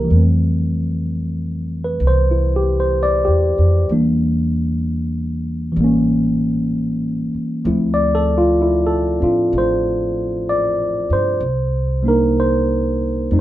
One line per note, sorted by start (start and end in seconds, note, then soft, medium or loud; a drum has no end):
0.00 0.05 E3 soft
0.00 0.09 G3 soft
0.00 0.11 A#3 soft
0.00 0.11 D4 soft
0.00 0.13 E4 soft
0.00 0.13 G4 soft
0.00 0.13 A4 soft
0.00 0.21 A#4 soft
0.05 3.88 E3 soft
0.09 1.97 F2 medium
0.09 3.90 G3 soft
0.09 3.91 A3 soft
0.16 3.93 C4 soft
1.84 2.00 B4 medium
2.00 3.23 C2 medium
2.07 2.35 C5 medium
2.31 2.63 E4 medium
2.56 2.76 G4 medium
2.80 2.95 C5 medium
3.03 3.30 D5 medium
3.25 3.57 E2 medium
3.25 3.45 G4 medium
3.58 3.88 F2 medium
3.89 5.74 E2 medium
3.89 5.71 E3 soft
3.89 5.75 G3 soft
3.89 5.79 A#3 soft
3.89 5.79 D4 soft
5.72 7.62 E3 soft
5.76 7.29 A1 medium
5.76 7.64 G3 soft
5.81 7.66 A#3 soft
5.81 7.68 C#4 medium
7.34 muted upright bass stroke soft
7.65 9.18 D2 medium
7.65 11.41 F3 soft
7.65 11.42 A3 soft
7.65 9.19 C4 soft
7.65 8.61 E4 medium
7.94 8.25 D5 medium
8.15 8.36 A4 medium
8.38 8.55 F4 medium
8.62 8.91 E4 medium
8.86 9.06 A4 medium
9.20 9.51 A2 medium
9.20 11.40 C4 soft
9.20 11.41 D4 soft
9.20 11.42 F4 soft
9.53 11.06 A1 medium
9.58 10.45 C5 medium
10.49 11.07 D5 medium
11.10 11.39 G2 medium
11.10 12.02 C5 medium
11.40 13.26 C2 medium
12.03 13.30 G3 soft
12.03 13.30 A#3 soft
12.03 13.31 D4 soft
12.08 13.32 D#4 soft
12.08 12.37 A#4 medium
12.40 13.38 C5 medium
13.31 13.40 F2 medium
13.31 13.40 G3 medium
13.31 13.40 A3 soft
13.31 13.40 C4 soft
13.31 13.40 D#4 medium